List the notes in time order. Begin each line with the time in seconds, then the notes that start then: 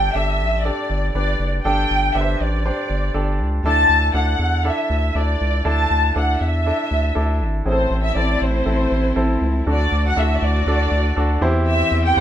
Already playing: G1 G2 D4 G4 A4 G5
0.14 G1 D4 G4 A4 E5
0.40 A1
0.65 D4 G4 A4 D5
0.90 G1
1.13 G1 D4 G4 B4 D5
1.39 F#1
1.64 G1 G2 D4 G4 A4 G5
1.90 G1
2.15 G1 D4 G4 B4 E5
2.21 C5
2.40 A1 D5
2.66 D4 G4 C5
2.90 G1
3.14 G1 D4 G4 A4
3.40 C#2
3.63 D2 D3 D4 E4 A4 A5
3.89 D2
4.14 D2 D4 E4 A4 F#5
4.39 E2
4.65 D4 E4 A4 E5
4.90 D2
5.15 D2 D4 E4 A4 D5
5.41 C#2
5.65 D2 D3 D4 E4 A4 A5
5.91 D2
6.16 D2 D4 E4 A4 F#5
6.41 E2 E5
6.66 D4 E4 A4
6.91 D2
7.15 D2 D4 E4 A4
7.41 G#1
7.65 A1 A2 A3 C4 E4 G#4 C5
7.72 A4
7.91 A1
8.03 E5
8.15 A1 C4 E4 A4 D5
8.41 A1 C5
8.66 A1 C4 E4 A4
8.91 A1
9.16 A1 C4 E4 A4
9.41 C#2
9.66 D2 D3 A3 D4 F#4 A4
9.71 D5
9.92 D2
10.09 F#5
10.16 D2 D4 E4 A4 E5
10.22 F#4
10.42 D2 D5
10.66 D2 D4 F#4 A4
10.91 D2
11.16 D2 D4 F#4 A4
11.41 E2 E3 C4 E4 G4 C5
11.69 E5
11.91 E2
12.06 G5
12.17 E2 E4 G4